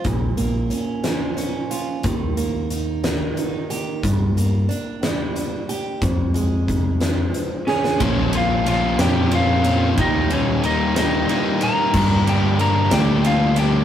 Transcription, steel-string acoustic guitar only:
\new Staff \with { instrumentName = "Steel-string acoustic guitar" } { \time 6/8 \key ees \mixolydian \tempo 4. = 61 bes,8 bes8 des'8 f8 des'8 f'8 | ees8 bes8 ees'8 ees8 ees'8 g'8 | g,8 bes8 d'8 g8 d'8 g'8 | f,8 aes4 f4 aes'8 |
r2. | r2. | r2. | }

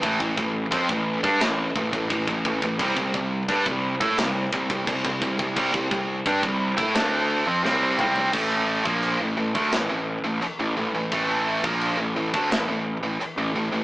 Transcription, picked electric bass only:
\new Staff \with { instrumentName = "Picked electric bass" } { \clef bass \time 4/4 \key a \minor \tempo 4 = 86 a,,16 a,,16 a,,8 f,16 a,,8 g,16 a,,8 a,,16 a,,16 a,,16 a,,16 a,,16 a,,16 | c,16 c,16 c,8 g,16 c,8 a,16 c,8 c,16 c,16 c,16 c,16 c,16 c,16 | c,16 c,16 c,8 g,16 c,8 a,16 d,8. f,16 c,8 c,8 | a,,8. bes,,8 a,,16 a,,16 d,16 a,,16 a,,8 a,,16 r16 a,,16 a,,16 a,,16 |
a,,8. bes,,8 a,,16 a,,16 d,16 a,,16 a,,8 a,,16 r16 a,,16 a,,16 a,,16 | }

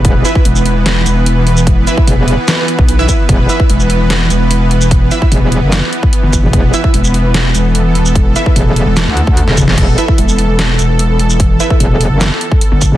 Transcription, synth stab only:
\new Staff \with { instrumentName = "Synth stab" } { \time 4/4 \key c \lydian \tempo 4 = 148 r8 <e' b' e''>16 r2. r16 | r8 <e' b' e''>16 r2 r8 <e' b' e''>16 r8 | r8 <e' b' e''>16 r2. r16 | r8 <e' b' e''>16 r2. r16 |
r8 <e' b' e''>16 r2. r16 | r8 <e' b' e''>16 r2. r16 | r8 <e' b' e''>16 r2. r16 | r8 <e' b' e''>16 r2. r16 | }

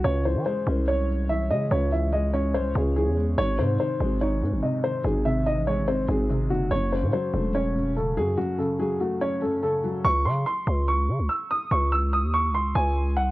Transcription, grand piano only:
\new Staff \with { instrumentName = "Grand piano" } { \time 4/4 \key fis \dorian \tempo 4 = 144 cis''8 bis'8 bis'4 cis''4 e''8 dis''8 | cis''8 e''8 dis''8 cis''8 bis'8 gis'8 gis'4 | cis''8 bis'8 bis'4 cis''4 dis''8 bis'8 | gis'8 e''8 dis''8 cis''8 bis'8 gis'4 fis'8 |
cis''8 bis'8 bis'4 cis''4 a'8 gis'8 | fis'8 a'8 gis'8 fis'8 cis''8 a'8 a'4 | cis'''8 bis''8 bis''4 cis'''4 e'''8 dis'''8 | cis'''8 e'''8 dis'''8 cis'''8 bis''8 gis''4 fis''8 | }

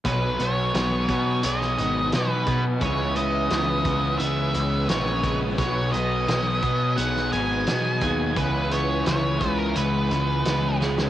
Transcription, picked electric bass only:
\new Staff \with { instrumentName = "Picked electric bass" } { \clef bass \time 4/4 \key b \major \tempo 4 = 86 b,,8 b,,8 b,,8 b,8 b,,8 gis,,8 b,8 b,8 | cis,4 cis,8 cis,8 cis,8 cis,8 ais,,4 | b,,8 b,,8 b,,8 b,8 b,,8 gis,,8 b,8 dis,8 | cis,4 cis,8 cis,8 cis,8 cis,8 cis,4 | }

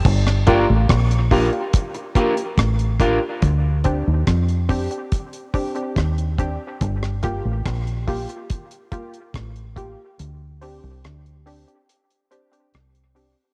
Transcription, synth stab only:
\new Staff \with { instrumentName = "Synth stab" } { \time 4/4 \key g \minor \tempo 4 = 71 r8 <bes f' g'>16 r8. <bes f' g'>16 <f' g'>16 r8 <bes f' g'>16 r8. <bes f' g'>16 r16 | r8 <c' d' g'>16 r8. <c' d' g'>16 <d' g'>16 r8 <c' d' g'>16 <c' d' g'>16 r8 <c' d' g'>16 r16 | r8 <bes f' g'>16 r8. <bes f' g'>16 <f' g'>16 r8 <bes f' g'>16 r8. <bes f' g'>16 r16 | r8 <c' d' g'>16 r8. <c' d' g'>16 <d' g'>16 r8 <c' d' g'>16 <c' d' g'>16 r8 <c' d' g'>16 r16 | }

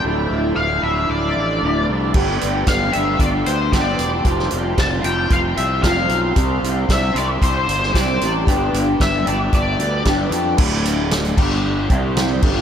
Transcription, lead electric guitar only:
\new Staff \with { instrumentName = "Lead electric guitar" } { \time 4/4 \key g \mixolydian \tempo 4 = 114 r4 f''8 e''8 d''4. r8 | r4 f''8 e''8 d''8 c''8 d''8. r16 | r4 a''8 g''8 f''8 e''8 f''8. r16 | r4 e''8 d''8 c''4 d''8. r16 |
r4 e''8 d''8 d''4 r4 | r1 | }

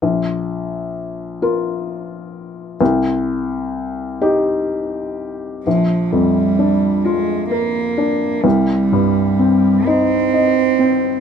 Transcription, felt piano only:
\new Staff \with { instrumentName = "Felt piano" } { \time 6/8 \key bes \mixolydian \tempo 4. = 43 bes,,4. <f' bes'>4. | c,4. <ees' g'>4. | bes,,8 f,8 d'8 f'8 bes'8 d'8 | c,8 g,8 c'8 ees'8 ees''8 c'8 | }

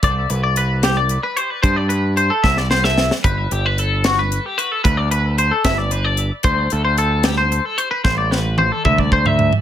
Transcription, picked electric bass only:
\new Staff \with { instrumentName = "Picked electric bass" } { \clef bass \time 6/8 \key c \major \tempo 4. = 75 c,8 c,2 r8 | g,4. c,4. | g,,8 g,,2 r8 | d,4. g,,4. |
d,8 d,2 r8 | a,,4. d,4. | }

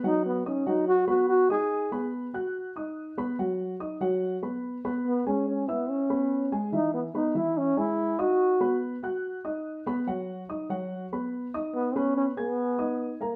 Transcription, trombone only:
\new Staff \with { instrumentName = "Trombone" } { \time 4/4 \key gis \minor \tempo 4 = 144 dis'8 b8 cis'8 dis'8 fis'8 fis'8 fis'8 gis'8~ | gis'4 r2. | r1 | b8 cis'8 cis'8 b8 cis'4. r8 |
dis'8 b8 dis'8 e'8 cis'8 e'4 fis'8~ | fis'4 r2. | r1 | b8 cis'8 cis'8 b2 r8 | }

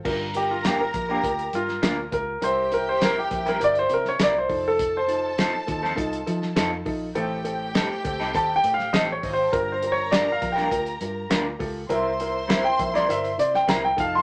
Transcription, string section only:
\new Staff \with { instrumentName = "String section" } { \time 4/4 \key g \minor \tempo 4 = 101 <bes' bes''>2.~ <bes' bes''>8 r8 | <g' g''>2. r8 <a' a''>8~ | <a' a''>2.~ <a' a''>8 r8 | <g' g''>2.~ <g' g''>16. r32 <ees' ees''>32 <f' f''>32 <g' g''>32 <a' a''>32 |
<bes' bes''>2.~ <bes' bes''>8 r8 | <c'' c'''>2. r8 <a' a''>8 | }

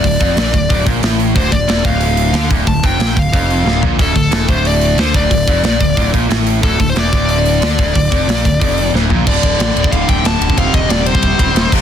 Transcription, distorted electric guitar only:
\new Staff \with { instrumentName = "Distorted electric guitar" } { \clef bass \time 4/4 \key d \minor \tempo 4 = 182 d,8 f,8 bes,8 d,8 d,8 bes,8 a,4 | d,8 d,8 e,8 d,4. d8 d,8 | d,8 f,8 bes,8 d,8 f,4 d,8 bes,8 | d,8 d,8 e,8 d,4. d8 d,8 |
d,8 f,8 bes,8 d,8 d,8 bes,8 a,4 | d,8 d,8 e,8 d,4. d8 d,8 | d,8 f,8 bes,8 d,8 f,4 d,8 bes,8 | <d, a, d>2~ <d, a, d>8 <d, a, d>8 <d, a, d>4 |
<c g c'>2~ <c g c'>8 <c g c'>8 <c g c'>8 <f, c f>8 | }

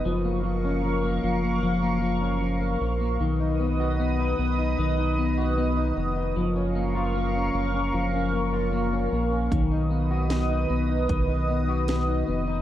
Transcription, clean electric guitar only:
\new Staff \with { instrumentName = "Clean electric guitar" } { \time 4/4 \key fis \major \tempo 4 = 76 eis16 ais16 eis16 cis'16 eis16 ais16 eis16 ais16 eis16 ais16 eis16 cis'16 eis16 ais16 eis16 ais16 | dis16 dis'16 b16 fis'16 b16 dis'16 b16 dis'16 dis16 dis'16 b16 fis'16 b16 dis'16 b16 dis'16 | eis16 cis'16 ais16 eis'16 ais16 cis'16 ais16 cis'16 eis16 cis'16 ais16 eis'16 ais16 cis'16 ais16 cis'16 | dis16 dis'16 b16 fis'16 b16 dis'16 b16 dis'16 dis16 dis'16 b16 fis'16 b16 dis'16 b16 dis'16 | }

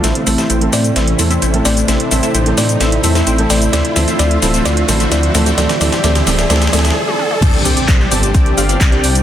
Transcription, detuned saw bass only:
\new Staff \with { instrumentName = "Detuned saw bass" } { \clef bass \time 4/4 \key d \minor \tempo 4 = 130 a,,8 a,,8 a,,8 a,8 a,,8 e,8 a,,8 a,,8 | a,,8 a,,8 a,,8 a,8 a,,8 e,8 a,,8 a,,8 | d,8 d,8 d,8 d,,8 d,8 a,,8 d,8 d,8 | d,8 d,8 d,8 d,,8 d,8 d,8 r4 |
c,8 c,8 c,8 g,,8 c,8 g,,8 c,8 c,8 | }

